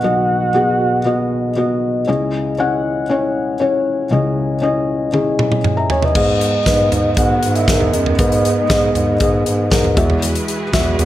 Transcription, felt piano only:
0.00 0.04 B1 soft
0.00 2.04 B1 medium
0.00 0.04 B2 medium
0.00 2.04 B2 medium
0.00 0.03 B3 medium
0.00 0.48 B3 medium
0.00 0.04 F#4 medium
0.00 0.48 F#4 soft
0.00 2.09 B4 medium
0.00 0.04 D#5 medium
0.04 0.48 D#5 medium
0.54 0.99 B3 medium
0.54 0.99 F#4 medium
0.54 0.99 G#4 medium
1.05 1.50 B3 medium
1.05 1.50 F#4 medium
1.05 1.50 D#5 medium
1.56 2.01 B3 medium
1.56 2.01 F#4 medium
1.56 2.01 D#5 medium
2.07 4.08 C#2 medium
2.07 4.08 C#3 medium
2.07 2.52 C#4 medium
2.07 2.52 E4 medium
2.07 2.52 D#5 medium
2.58 3.03 C#4 medium
2.58 3.03 E4 medium
2.58 3.03 F#5 medium
3.09 3.54 C#4 medium
3.09 3.54 E4 medium
3.09 3.54 C#5 medium
3.60 4.04 C#4 medium
3.60 4.05 E4 medium
3.60 4.05 C#5 medium
4.11 6.11 C#2 medium
4.11 6.11 C#3 medium
4.11 4.55 C#4 medium
4.11 4.55 E4 medium
4.11 4.56 D#5 medium
4.62 5.06 C#4 medium
4.62 5.07 E4 medium
4.62 5.07 D#5 medium
5.13 5.57 C#4 medium
5.13 5.57 E4 medium
5.13 5.58 G#4 medium
5.77 5.89 E5 soft
5.77 5.89 A#5 medium
5.90 6.02 D#5 soft
5.90 6.02 G#5 medium
6.03 6.27 B4 soft
6.03 6.27 E5 soft
6.15 6.88 G#2 medium
6.15 6.59 B3 medium
6.15 6.59 G#4 medium
6.15 6.60 D#5 medium
6.65 7.10 B3 medium
6.65 7.10 G#4 medium
6.65 7.11 B4 medium
7.17 7.61 B3 medium
7.17 7.61 G#4 medium
7.17 7.62 D#5 medium
7.67 8.12 B3 medium
7.67 8.12 G#4 medium
7.67 8.13 A#4 medium
8.19 8.91 G#2 medium
8.19 8.63 B3 medium
8.19 8.63 G#4 medium
8.19 8.63 B4 medium
8.69 9.13 B3 medium
8.69 9.14 G#4 medium
8.69 9.14 D#5 medium
9.20 9.65 B3 medium
9.20 9.65 G#4 medium
9.20 9.65 D#5 medium
9.71 9.97 B3 medium
9.71 9.97 G#4 medium
9.71 9.97 A#4 medium
9.96 10.69 E3 medium
9.96 10.63 G#3 medium
9.96 10.63 F#4 medium
9.96 10.63 E5 medium
10.72 11.05 G#3 medium
10.72 11.05 F#4 medium
10.72 11.05 E5 medium

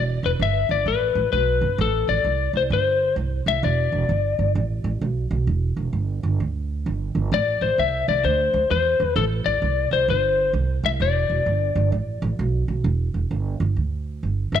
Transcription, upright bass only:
0.00 0.22 E1 medium
0.23 0.39 E1 medium
0.40 0.68 G1 medium
0.69 0.85 G1 medium
0.86 1.14 A1 medium
1.15 1.31 A1 medium
1.33 1.61 B1 medium
1.61 1.77 G1 medium
1.78 2.06 A1 loud
2.08 2.24 A1 medium
2.24 2.53 C2 medium
2.53 2.70 C2 medium
2.70 3.15 G1 medium
3.16 3.45 C2 medium
3.46 3.62 C2 medium
3.63 3.91 E1 medium
3.92 4.08 E1 medium
4.09 4.37 G1 medium
4.39 4.55 G1 medium
4.55 4.83 A1 medium
4.84 5.00 A1 medium
5.01 5.30 B1 medium
5.31 5.47 B1 medium
5.47 5.75 E1 medium
5.77 5.92 E1 medium
5.93 6.21 G1 medium
6.23 6.39 G1 medium
6.40 6.84 D2 medium
6.86 7.14 G1 medium
7.15 7.31 G1 medium
7.32 7.60 A1 medium
7.61 7.77 A1 medium
7.78 8.06 C2 medium
8.08 8.23 C2 medium
8.24 8.52 D2 medium
8.54 8.70 D2 medium
8.70 8.98 E2 medium
9.00 9.15 E2 medium
9.16 9.44 A1 loud
9.46 9.61 A1 medium
9.62 9.90 C2 medium
9.91 10.07 C2 medium
10.08 10.53 G1 medium
10.53 10.82 C2 medium
10.83 10.99 C2 medium
11.00 11.29 E1 medium
11.30 11.45 E1 medium
11.46 11.75 G1 medium
11.75 11.91 G1 medium
11.92 12.21 A1 medium
12.22 12.38 A1 medium
12.39 12.67 B1 medium
12.68 12.84 B1 medium
12.84 13.13 E1 medium
13.14 13.30 E1 medium
13.31 13.59 G1 medium
13.60 13.76 G1 medium
13.76 14.21 D2 medium
14.23 14.52 G1 medium
14.52 14.60 G1 medium

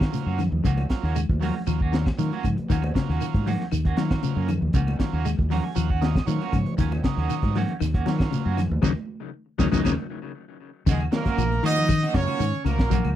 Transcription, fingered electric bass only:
0.26 0.47 F#2 medium
0.52 0.62 D#2 medium
0.65 0.85 C#2 medium
1.03 1.24 D#2 medium
1.29 1.50 D#2 medium
1.67 2.09 D#2 medium
2.18 2.29 D#3 medium
2.44 2.55 G#2 medium
2.59 muted fingered electric bass stroke soft
2.70 2.91 D#2 loud
3.09 3.19 D#2 medium
3.34 3.55 G#2 medium
3.72 3.93 D#2 medium
3.98 4.19 D#3 medium
4.36 4.57 F#2 medium
4.62 4.72 D#2 medium
4.74 4.95 C#2 medium
4.99 muted fingered electric bass stroke soft
5.13 5.34 D#2 medium
5.38 5.59 D#2 medium
5.77 6.18 D#2 medium
6.27 6.38 D#3 medium
6.53 6.64 G#2 medium
6.67 muted fingered electric bass stroke soft
6.78 6.99 D#2 loud
7.17 7.28 D#2 medium
7.43 7.64 G#2 medium
7.81 8.02 D#2 medium
8.07 8.28 D#3 medium
8.46 8.67 F#2 medium
8.71 8.81 D#2 medium
8.83 8.93 D#2 medium
9.59 9.70 D#2 medium
9.73 9.82 D#2 medium
9.85 9.95 D#2 loud
10.86 11.08 D#2 medium
11.38 11.59 A#1 loud
11.64 12.05 D#3 medium
12.14 12.25 F#2 medium
12.40 12.51 G#2 medium
12.65 12.79 C#2 medium
12.79 13.00 A#1 medium
13.05 13.16 C#2 medium

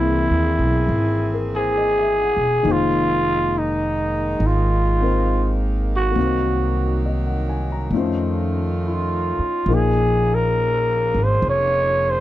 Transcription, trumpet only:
0.00 1.48 E4 medium
1.55 2.73 G#4 medium
2.72 3.60 F4 medium
3.58 4.48 D#4 medium
4.46 5.55 F4 medium
5.96 7.04 F#4 medium
8.86 9.75 F4 medium
9.74 10.36 G#4 medium
10.34 11.25 A#4 medium
11.23 11.47 C5 medium
11.50 12.11 C#5 medium
12.10 12.20 C5 medium

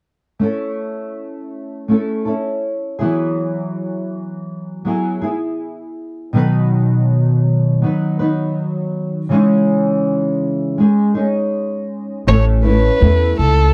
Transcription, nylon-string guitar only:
0.39 1.87 A3 medium
0.39 1.88 C#4 medium
0.39 1.89 E4 medium
0.39 1.90 A4 medium
1.88 2.26 A3 soft
1.88 2.26 C#4 soft
1.88 2.26 E4 soft
1.88 2.24 A4 medium
2.25 3.01 C#4 soft
2.25 3.00 E4 soft
2.25 2.98 A4 soft
2.99 4.87 E3 soft
2.99 4.84 F#3 soft
2.99 4.86 B3 medium
2.99 4.85 E4 medium
2.99 4.85 G#4 medium
4.85 5.22 F#3 soft
4.85 5.23 B3 soft
4.85 5.22 E4 soft
4.85 5.20 G#4 medium
5.21 6.34 B3 soft
5.21 6.34 E4 soft
5.21 6.34 G#4 soft
6.33 7.82 B2 medium
6.33 9.30 D#3 medium
6.33 7.81 F#3 medium
6.33 7.81 B3 medium
6.33 7.83 D#4 medium
6.33 7.83 B4 medium
7.82 8.19 F#3 medium
7.82 8.20 B3 soft
7.82 8.19 D#4 medium
7.82 8.18 B4 medium
8.19 9.31 F#3 soft
8.19 9.31 B3 soft
8.19 9.32 D#4 soft
8.19 9.31 B4 soft
9.29 10.78 C#3 medium
9.29 10.83 E3 medium
9.29 10.77 G#3 medium
9.29 10.79 C#4 medium
9.29 10.78 D#4 medium
9.29 10.79 G#4 medium
10.78 11.16 G#3 medium
10.78 11.15 C#4 soft
10.78 11.14 D#4 medium
10.78 11.13 G#4 medium
11.14 12.27 G#3 soft
11.14 12.27 C#4 soft
11.14 12.27 D#4 soft
11.14 12.26 G#4 soft
12.27 12.64 A2 medium
12.27 12.64 E3 medium
12.27 12.64 A3 medium
12.27 12.64 C#4 medium
12.27 12.63 E4 medium
12.27 12.62 A4 medium
12.63 12.99 A3 soft
12.63 13.00 C#4 soft
12.63 13.01 E4 soft
12.63 13.01 A4 soft
13.00 13.74 A3 soft
13.00 13.74 C#4 soft
13.00 13.74 E4 soft
13.00 13.74 A4 soft

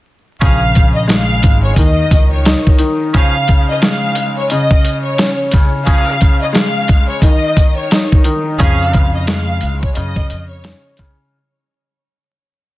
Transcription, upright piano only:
0.42 0.75 C#3 medium
0.77 1.78 C#3 medium
1.07 1.77 G#3 medium
1.78 2.78 D#3 medium
2.47 3.15 D#4 medium
2.79 3.14 D#3 medium
3.15 3.47 C#3 loud
3.49 4.50 C#3 medium
3.82 4.50 G#3 medium
4.51 5.52 C#3 medium
5.20 5.87 C#4 medium
5.54 5.86 C#3 medium
5.88 6.21 C#3 medium
6.22 7.24 C#3 medium
6.53 7.22 G#3 medium
7.23 8.23 D#3 medium
7.92 8.60 D#4 medium
8.25 8.59 D#3 medium
8.60 8.93 C#3 medium
8.94 9.95 C#3 medium
9.27 9.96 G#3 medium
9.97 10.98 C#3 medium
10.65 11.33 C#4 medium
10.99 11.33 C#3 medium

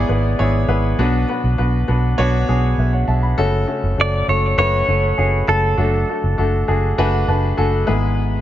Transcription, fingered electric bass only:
0.09 0.33 G#1 medium
0.39 0.64 G#1 medium
0.68 0.93 G#1 medium
0.98 1.23 B1 medium
1.44 1.56 B1 medium
1.59 1.83 B1 medium
1.89 2.13 B1 medium
2.19 2.43 B1 medium
2.49 2.73 B1 medium
2.78 3.03 B1 medium
3.08 3.33 B1 medium
3.38 3.63 F#1 medium
3.83 3.96 F#1 medium
3.98 4.23 F#1 medium
4.28 4.53 F#1 medium
4.58 4.83 F#1 medium
4.88 5.13 F#1 medium
5.18 5.43 F#1 medium
5.48 5.73 F#1 medium
5.78 6.03 F#1 medium
6.23 6.36 F#1 medium
6.39 6.63 F#1 medium
6.68 6.93 F#1 medium
6.98 7.23 F#1 medium
7.28 7.53 F#1 medium
7.58 7.83 F#1 medium
7.88 8.38 G#1 medium

